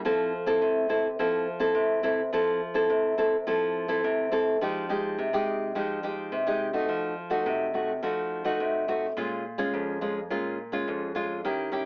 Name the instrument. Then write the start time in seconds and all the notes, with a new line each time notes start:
nylon-string guitar
0.05 F3 C4 E4 A4
0.46 C4 E4 A4
0.62 C3
0.89 C4 E4 A4
1.19 F3 C4 E4 A4
1.60 C4 E4 A4
1.75 C3
2.03 C4 E4 A4
2.33 F3 C4 E4 A4
2.74 C4 E4 A4
2.90 C3
3.18 C4 E4 A4
3.47 F3 C4 E4 A4
3.88 C4 E4 A4
4.04 C3
4.32 C4 E4 A4
4.61 F3 G#3 D#4 G4
4.89 G#3 D#4 G4
5.18 C3
5.33 G#3 D#4 G4
5.75 F3 G#3 D#4 G4
6.03 G#3 D#4 G4
6.32 C3
6.47 G#3 D#4 G4
6.73 A3 D#4 F#4
6.88 F3
7.30 A3 D#4 F#4
7.46 C3
7.74 A3 D#4 F#4
8.03 F3 A3 D#4 F#4
8.44 A3 D#4 F#4
8.60 C3
8.88 A3 D#4 F#4
9.17 A#2 G#3 C#4 F4
9.58 G#3 C#4 F4
9.73 F2
10.01 G#3 C#4 F4
10.30 A#2 G#3 C#4 F4
10.72 G#3 C#4 F4
10.88 F2
11.15 G#3 C#4 F4
11.45 D#3 C#4 E4 G4
11.72 C#4 E4 G4